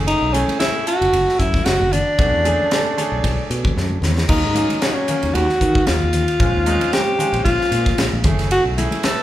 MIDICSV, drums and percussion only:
0, 0, Header, 1, 2, 480
1, 0, Start_track
1, 0, Tempo, 527704
1, 62, Time_signature, 4, 2, 24, 8
1, 8394, End_track
2, 0, Start_track
2, 0, Title_t, "Drums"
2, 69, Note_on_c, 9, 51, 74
2, 160, Note_off_c, 9, 51, 0
2, 311, Note_on_c, 9, 44, 79
2, 311, Note_on_c, 9, 51, 54
2, 312, Note_on_c, 9, 63, 65
2, 402, Note_off_c, 9, 44, 0
2, 402, Note_off_c, 9, 51, 0
2, 403, Note_off_c, 9, 63, 0
2, 437, Note_on_c, 9, 63, 62
2, 446, Note_on_c, 9, 51, 53
2, 528, Note_off_c, 9, 63, 0
2, 537, Note_off_c, 9, 51, 0
2, 547, Note_on_c, 9, 51, 74
2, 552, Note_on_c, 9, 38, 98
2, 638, Note_off_c, 9, 51, 0
2, 643, Note_off_c, 9, 38, 0
2, 790, Note_on_c, 9, 44, 80
2, 790, Note_on_c, 9, 51, 58
2, 881, Note_off_c, 9, 44, 0
2, 881, Note_off_c, 9, 51, 0
2, 926, Note_on_c, 9, 51, 54
2, 1017, Note_off_c, 9, 51, 0
2, 1029, Note_on_c, 9, 63, 58
2, 1031, Note_on_c, 9, 51, 79
2, 1120, Note_off_c, 9, 63, 0
2, 1122, Note_off_c, 9, 51, 0
2, 1172, Note_on_c, 9, 38, 29
2, 1263, Note_off_c, 9, 38, 0
2, 1269, Note_on_c, 9, 36, 57
2, 1270, Note_on_c, 9, 44, 70
2, 1270, Note_on_c, 9, 51, 51
2, 1360, Note_off_c, 9, 36, 0
2, 1361, Note_off_c, 9, 44, 0
2, 1361, Note_off_c, 9, 51, 0
2, 1399, Note_on_c, 9, 63, 57
2, 1400, Note_on_c, 9, 36, 68
2, 1406, Note_on_c, 9, 38, 28
2, 1490, Note_off_c, 9, 63, 0
2, 1491, Note_off_c, 9, 36, 0
2, 1496, Note_off_c, 9, 38, 0
2, 1506, Note_on_c, 9, 51, 74
2, 1512, Note_on_c, 9, 38, 101
2, 1597, Note_off_c, 9, 51, 0
2, 1603, Note_off_c, 9, 38, 0
2, 1635, Note_on_c, 9, 63, 57
2, 1726, Note_off_c, 9, 63, 0
2, 1745, Note_on_c, 9, 64, 57
2, 1753, Note_on_c, 9, 44, 82
2, 1753, Note_on_c, 9, 51, 56
2, 1836, Note_off_c, 9, 64, 0
2, 1844, Note_off_c, 9, 44, 0
2, 1844, Note_off_c, 9, 51, 0
2, 1989, Note_on_c, 9, 51, 64
2, 1990, Note_on_c, 9, 36, 90
2, 2080, Note_off_c, 9, 51, 0
2, 2081, Note_off_c, 9, 36, 0
2, 2231, Note_on_c, 9, 44, 82
2, 2231, Note_on_c, 9, 51, 53
2, 2233, Note_on_c, 9, 63, 61
2, 2322, Note_off_c, 9, 44, 0
2, 2322, Note_off_c, 9, 51, 0
2, 2324, Note_off_c, 9, 63, 0
2, 2360, Note_on_c, 9, 63, 60
2, 2451, Note_off_c, 9, 63, 0
2, 2468, Note_on_c, 9, 51, 67
2, 2473, Note_on_c, 9, 38, 103
2, 2559, Note_off_c, 9, 51, 0
2, 2564, Note_off_c, 9, 38, 0
2, 2708, Note_on_c, 9, 64, 56
2, 2712, Note_on_c, 9, 44, 80
2, 2712, Note_on_c, 9, 51, 55
2, 2799, Note_off_c, 9, 64, 0
2, 2803, Note_off_c, 9, 44, 0
2, 2803, Note_off_c, 9, 51, 0
2, 2944, Note_on_c, 9, 63, 57
2, 2947, Note_on_c, 9, 36, 63
2, 2949, Note_on_c, 9, 51, 79
2, 3035, Note_off_c, 9, 63, 0
2, 3038, Note_off_c, 9, 36, 0
2, 3040, Note_off_c, 9, 51, 0
2, 3190, Note_on_c, 9, 44, 65
2, 3190, Note_on_c, 9, 51, 54
2, 3280, Note_off_c, 9, 44, 0
2, 3280, Note_off_c, 9, 51, 0
2, 3311, Note_on_c, 9, 63, 59
2, 3311, Note_on_c, 9, 64, 51
2, 3318, Note_on_c, 9, 36, 75
2, 3402, Note_off_c, 9, 63, 0
2, 3402, Note_off_c, 9, 64, 0
2, 3409, Note_off_c, 9, 36, 0
2, 3435, Note_on_c, 9, 38, 55
2, 3526, Note_off_c, 9, 38, 0
2, 3547, Note_on_c, 9, 63, 58
2, 3638, Note_off_c, 9, 63, 0
2, 3656, Note_on_c, 9, 64, 65
2, 3668, Note_on_c, 9, 44, 76
2, 3673, Note_on_c, 9, 38, 67
2, 3747, Note_off_c, 9, 64, 0
2, 3759, Note_off_c, 9, 44, 0
2, 3764, Note_off_c, 9, 38, 0
2, 3802, Note_on_c, 9, 38, 66
2, 3893, Note_off_c, 9, 38, 0
2, 3899, Note_on_c, 9, 49, 87
2, 3903, Note_on_c, 9, 36, 92
2, 3990, Note_off_c, 9, 49, 0
2, 3994, Note_off_c, 9, 36, 0
2, 4139, Note_on_c, 9, 63, 69
2, 4143, Note_on_c, 9, 44, 85
2, 4143, Note_on_c, 9, 51, 64
2, 4230, Note_off_c, 9, 63, 0
2, 4234, Note_off_c, 9, 44, 0
2, 4234, Note_off_c, 9, 51, 0
2, 4272, Note_on_c, 9, 63, 61
2, 4276, Note_on_c, 9, 51, 58
2, 4363, Note_off_c, 9, 63, 0
2, 4367, Note_off_c, 9, 51, 0
2, 4381, Note_on_c, 9, 51, 75
2, 4387, Note_on_c, 9, 38, 94
2, 4472, Note_off_c, 9, 51, 0
2, 4478, Note_off_c, 9, 38, 0
2, 4619, Note_on_c, 9, 44, 78
2, 4619, Note_on_c, 9, 51, 62
2, 4626, Note_on_c, 9, 64, 57
2, 4710, Note_off_c, 9, 44, 0
2, 4710, Note_off_c, 9, 51, 0
2, 4717, Note_off_c, 9, 64, 0
2, 4753, Note_on_c, 9, 51, 55
2, 4844, Note_off_c, 9, 51, 0
2, 4866, Note_on_c, 9, 63, 62
2, 4867, Note_on_c, 9, 51, 72
2, 4957, Note_off_c, 9, 63, 0
2, 4958, Note_off_c, 9, 51, 0
2, 4998, Note_on_c, 9, 38, 27
2, 5089, Note_off_c, 9, 38, 0
2, 5103, Note_on_c, 9, 36, 56
2, 5105, Note_on_c, 9, 44, 69
2, 5105, Note_on_c, 9, 51, 48
2, 5194, Note_off_c, 9, 36, 0
2, 5196, Note_off_c, 9, 44, 0
2, 5196, Note_off_c, 9, 51, 0
2, 5233, Note_on_c, 9, 36, 76
2, 5237, Note_on_c, 9, 63, 70
2, 5324, Note_off_c, 9, 36, 0
2, 5328, Note_off_c, 9, 63, 0
2, 5336, Note_on_c, 9, 51, 72
2, 5341, Note_on_c, 9, 38, 96
2, 5427, Note_off_c, 9, 51, 0
2, 5432, Note_off_c, 9, 38, 0
2, 5574, Note_on_c, 9, 44, 79
2, 5574, Note_on_c, 9, 51, 55
2, 5580, Note_on_c, 9, 38, 26
2, 5587, Note_on_c, 9, 64, 68
2, 5665, Note_off_c, 9, 44, 0
2, 5665, Note_off_c, 9, 51, 0
2, 5671, Note_off_c, 9, 38, 0
2, 5678, Note_off_c, 9, 64, 0
2, 5711, Note_on_c, 9, 51, 52
2, 5802, Note_off_c, 9, 51, 0
2, 5820, Note_on_c, 9, 51, 69
2, 5821, Note_on_c, 9, 36, 92
2, 5911, Note_off_c, 9, 51, 0
2, 5912, Note_off_c, 9, 36, 0
2, 6059, Note_on_c, 9, 44, 79
2, 6059, Note_on_c, 9, 51, 50
2, 6066, Note_on_c, 9, 63, 70
2, 6150, Note_off_c, 9, 44, 0
2, 6150, Note_off_c, 9, 51, 0
2, 6157, Note_off_c, 9, 63, 0
2, 6192, Note_on_c, 9, 63, 68
2, 6195, Note_on_c, 9, 51, 57
2, 6283, Note_off_c, 9, 63, 0
2, 6286, Note_off_c, 9, 51, 0
2, 6303, Note_on_c, 9, 51, 63
2, 6308, Note_on_c, 9, 38, 98
2, 6394, Note_off_c, 9, 51, 0
2, 6399, Note_off_c, 9, 38, 0
2, 6539, Note_on_c, 9, 64, 63
2, 6547, Note_on_c, 9, 44, 80
2, 6547, Note_on_c, 9, 51, 56
2, 6630, Note_off_c, 9, 64, 0
2, 6638, Note_off_c, 9, 44, 0
2, 6638, Note_off_c, 9, 51, 0
2, 6672, Note_on_c, 9, 51, 53
2, 6763, Note_off_c, 9, 51, 0
2, 6781, Note_on_c, 9, 36, 65
2, 6782, Note_on_c, 9, 63, 68
2, 6784, Note_on_c, 9, 51, 81
2, 6872, Note_off_c, 9, 36, 0
2, 6873, Note_off_c, 9, 63, 0
2, 6875, Note_off_c, 9, 51, 0
2, 6924, Note_on_c, 9, 38, 29
2, 7015, Note_off_c, 9, 38, 0
2, 7020, Note_on_c, 9, 44, 67
2, 7020, Note_on_c, 9, 51, 55
2, 7025, Note_on_c, 9, 38, 27
2, 7111, Note_off_c, 9, 44, 0
2, 7111, Note_off_c, 9, 51, 0
2, 7116, Note_off_c, 9, 38, 0
2, 7151, Note_on_c, 9, 63, 66
2, 7152, Note_on_c, 9, 36, 75
2, 7152, Note_on_c, 9, 51, 54
2, 7158, Note_on_c, 9, 38, 27
2, 7242, Note_off_c, 9, 63, 0
2, 7243, Note_off_c, 9, 36, 0
2, 7243, Note_off_c, 9, 51, 0
2, 7249, Note_off_c, 9, 38, 0
2, 7259, Note_on_c, 9, 51, 87
2, 7265, Note_on_c, 9, 38, 102
2, 7350, Note_off_c, 9, 51, 0
2, 7356, Note_off_c, 9, 38, 0
2, 7395, Note_on_c, 9, 63, 65
2, 7486, Note_off_c, 9, 63, 0
2, 7492, Note_on_c, 9, 44, 80
2, 7492, Note_on_c, 9, 51, 55
2, 7497, Note_on_c, 9, 36, 85
2, 7498, Note_on_c, 9, 64, 80
2, 7583, Note_off_c, 9, 44, 0
2, 7583, Note_off_c, 9, 51, 0
2, 7588, Note_off_c, 9, 36, 0
2, 7589, Note_off_c, 9, 64, 0
2, 7631, Note_on_c, 9, 51, 54
2, 7636, Note_on_c, 9, 38, 29
2, 7722, Note_off_c, 9, 51, 0
2, 7727, Note_off_c, 9, 38, 0
2, 7739, Note_on_c, 9, 51, 80
2, 7830, Note_off_c, 9, 51, 0
2, 7985, Note_on_c, 9, 44, 82
2, 7985, Note_on_c, 9, 51, 57
2, 7986, Note_on_c, 9, 63, 76
2, 8076, Note_off_c, 9, 44, 0
2, 8076, Note_off_c, 9, 51, 0
2, 8077, Note_off_c, 9, 63, 0
2, 8105, Note_on_c, 9, 63, 68
2, 8114, Note_on_c, 9, 51, 57
2, 8196, Note_off_c, 9, 63, 0
2, 8205, Note_off_c, 9, 51, 0
2, 8216, Note_on_c, 9, 51, 74
2, 8222, Note_on_c, 9, 38, 101
2, 8307, Note_off_c, 9, 51, 0
2, 8313, Note_off_c, 9, 38, 0
2, 8394, End_track
0, 0, End_of_file